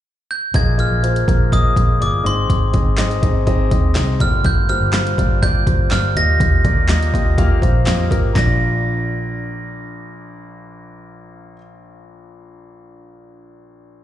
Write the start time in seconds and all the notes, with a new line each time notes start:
0.31 G6
0.54 A#1 A#2 F3 A#3 F4 G#4 D#5 G#6, kick, closed hi-hat
0.78 A#3 F4 G#4 D#5 F6, closed hi-hat
0.91 A#1
1.03 A#3 F4 G#4 C5, closed hi-hat
1.16 closed hi-hat
1.27 A#1 A#3 F4 G#4 A#4, kick, closed hi-hat
1.52 A#3 F4 G#4 D#5 D#6, kick, closed hi-hat
1.76 A#1 A#3 F4 G#4 D#5, kick, closed hi-hat
2.00 G1 A#3 F4 G#4 D5 D6, closed hi-hat
2.24 G#1 G#2 D#3 C4 D#4 G#4 D#5 C6, closed hi-hat
2.50 G#1, kick, closed hi-hat
2.73 C4 D#4 G#4 D#5, kick, closed hi-hat
2.87 G#1
2.98 C4 D#4 G#4 D#5, snare, clap, closed hi-hat
3.11 closed hi-hat
3.22 G#1 C4 D#4 G#4 D#5, kick, closed hi-hat
3.47 C4 D#4 G#4 D#5, kick, closed hi-hat
3.71 D#2 C4 D#4 G#4 D#5, kick, closed hi-hat
3.95 C2 C4 D#4 G#4 D#5, snare, clap, closed hi-hat
4.20 G1 G2 D3 A#3 F4 G4 D5 F6, kick, closed hi-hat
4.44 G6, kick, closed hi-hat
4.69 A#3 F4 G4 C5 F6, closed hi-hat
4.81 G1
4.93 A#3 F4 G4 C5, snare, clap, closed hi-hat
5.07 closed hi-hat
5.18 G1 A#3 F4 G4 D5, kick, closed hi-hat
5.42 A#3 F4 G4 D5 G6, kick, closed hi-hat
5.67 G1 A#3 F4 G4 C5, kick, closed hi-hat
5.91 G1 A#3 F4 G4 D5 F6, snare, clap, closed hi-hat
6.15 D#2 A#2 A#3 F4 G4 D#5 A#6, closed hi-hat
6.40 D#2, kick, closed hi-hat
6.65 A#3 F4 G4 D5, kick, closed hi-hat
6.77 D#2
6.89 A#3 F4 G4 D#5, snare, clap, closed hi-hat
7.03 closed hi-hat
7.14 D#2 A#3 F4 G4 D#5, kick, closed hi-hat
7.38 A#3 F4 G4 F5, kick, closed hi-hat
7.62 A#1 A#3 F4 G4 C5, kick, closed hi-hat
7.86 F2 A#3 F4 G4 D#5, snare, clap, closed hi-hat
8.11 G#1 A#3 F4 G4 A#4, kick, closed hi-hat
8.33 A#1 A#3 D4 F4 D5 A#6, kick, snare